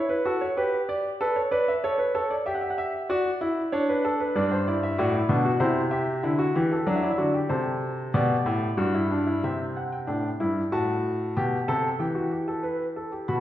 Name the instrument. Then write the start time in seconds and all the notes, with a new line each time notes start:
grand piano
Already playing: E4
0.09 B4
0.25 F#4 A4
0.41 C#5
0.57 G4 B4
0.89 D5
1.21 A4 B4
1.36 C#5
1.51 B4 D5
1.68 E5
1.84 A4 C#5
1.98 B4
2.15 A4 C#5
2.30 D5
2.46 G4 E5
2.54 F#5
2.61 E5
2.70 F#5
2.78 E5
3.09 F#4 D5
3.41 E4
3.72 D4 C#5
3.89 B4
4.05 A4
4.20 B4
4.36 G2 D4 D5
4.51 C5
4.68 E4 D5
4.83 E5
4.98 A2 F#4 D5
5.14 E4
5.29 B2 D4
5.45 F#4
5.60 C3 E4 C5
5.91 G4 E5
6.23 D3 E4
6.39 F#4
6.55 E3 G4
6.72 A4
6.87 F#3 D4 D5
6.95 E5
7.02 E4 D5
7.11 E5
7.18 D3 F#4 D5
7.34 G4
7.49 C3 A4 C5
8.14 B2 G4 D5
8.46 A2
8.77 G2 F#4
8.94 E4
9.11 D4
9.27 E4
9.44 C3 C4 E5
9.76 F#5
9.93 G5
10.07 A2 D4
10.40 G2 E4
10.72 A2 F#4 A5
11.37 B2 G4
11.68 C3 A4
11.99 E3 G4 G5
12.15 F#4
12.31 G4
12.48 A4
12.63 B4
12.96 A4
13.12 G4
13.28 B2 F#4 B5
13.35 A5